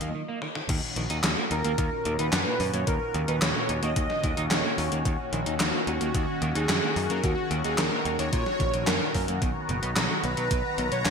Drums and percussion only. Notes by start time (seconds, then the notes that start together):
0.01 closed hi-hat
0.42 high tom
0.55 mid tom
0.69 kick, closed hi-hat, crash
0.96 closed hi-hat
1.10 closed hi-hat
1.24 snare, clap, closed hi-hat
1.51 closed hi-hat
1.64 closed hi-hat
1.78 kick, closed hi-hat
2.05 closed hi-hat
2.19 closed hi-hat
2.33 snare, clap, closed hi-hat
2.60 open hi-hat
2.74 closed hi-hat
2.87 kick, closed hi-hat
3.14 closed hi-hat
3.28 closed hi-hat
3.42 snare, clap, closed hi-hat
3.69 closed hi-hat
3.83 closed hi-hat
3.96 kick, closed hi-hat
4.10 snare
4.24 kick, closed hi-hat
4.37 closed hi-hat
4.51 snare, clap, closed hi-hat
4.78 open hi-hat
4.92 closed hi-hat
5.05 kick, closed hi-hat
5.33 closed hi-hat
5.46 closed hi-hat
5.60 snare, clap, closed hi-hat
5.87 closed hi-hat
6.01 closed hi-hat
6.15 kick, closed hi-hat
6.42 closed hi-hat
6.55 closed hi-hat
6.69 snare, clap, closed hi-hat
6.96 open hi-hat
7.10 closed hi-hat
7.24 kick, closed hi-hat
7.51 closed hi-hat
7.64 closed hi-hat
7.78 snare, clap, closed hi-hat
8.05 closed hi-hat
8.19 closed hi-hat
8.33 kick, closed hi-hat
8.46 snare
8.60 kick, closed hi-hat
8.74 closed hi-hat
8.87 snare, clap, closed hi-hat
9.15 kick, open hi-hat
9.28 closed hi-hat
9.42 kick, closed hi-hat
9.69 closed hi-hat
9.83 closed hi-hat
9.96 snare, clap, closed hi-hat
10.24 closed hi-hat
10.37 closed hi-hat
10.51 kick, closed hi-hat
10.78 closed hi-hat
10.92 closed hi-hat
11.05 snare, clap, closed hi-hat